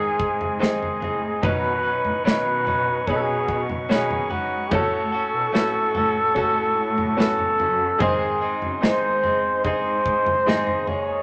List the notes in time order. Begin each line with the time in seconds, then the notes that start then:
Already playing: G#2 D#3 G#3 C4 D#4 G#4 D#5 G#5 C6
0.20 kick
0.41 floor tom
0.60 G#2 D#3 G#3 C4 D#4 G#4, snare
0.82 floor tom
1.00 A2 G#3 C4 D#4 G#4, floor tom
1.42 B2 D#3 F#3 C#4 D#4 B4 C#6, kick, floor tom
1.83 F#3 C#4 D#4 B4
2.05 A2, floor tom
2.24 B2 D#3 F#3 C#4 D#4 B4, snare
2.66 F#3 C#4 D#4 B4, floor tom
3.07 B2 F#3 C#4 D#4 G#4 B4, kick, floor tom
3.16 A4
3.22 G#4
3.48 kick
3.70 floor tom
3.89 B2 D#3 F#3 C#4 D#4 G#4 B4 C#5, snare
4.11 floor tom
4.30 G#2 F#3 C#4 D#4 F#4 B4, floor tom
4.71 A2 A3 C#4 F#4 A4 F#5, kick, floor tom
5.12 C#4 F#4 A4
5.33 B2
5.53 A2 A3 C#4 F#4 A4 B4, snare
5.95 C#4 F#4 A4, floor tom
6.35 A2 A3 C#4 F#4 A4, kick, floor tom
6.98 floor tom
7.17 A3 C#4 F#4 A4 B4, snare
7.39 floor tom
7.58 F#2 C#4 F#4 A4, floor tom
7.98 G#2 D#3 G#3 C4 D#4 G#4 C5 D#5 C6, kick, floor tom
8.41 G#3 C4 D#4 G#4
8.62 F#2, floor tom
8.81 G#2 D#3 G#3 C4 D#4 G#4 C5, snare
9.23 G#3 C4 D#4 G#4, floor tom
9.64 G#2 G#3 C4 D#4 G#4 C5, kick, floor tom
10.06 kick
10.26 floor tom
10.46 G#2 D#3 G#3 C4 D#4 G#4 D#5, snare
10.67 floor tom
10.87 D#2 G#3 D#4 G#4 C#5, floor tom